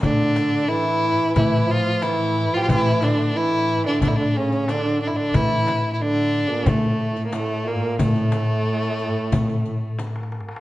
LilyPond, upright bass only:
\new Staff \with { instrumentName = "Upright bass" } { \clef bass \time 4/4 \tempo 4 = 90 a,2 a,2 | a,2 a,2 | a,2 a,2 | a,2 a,2 | }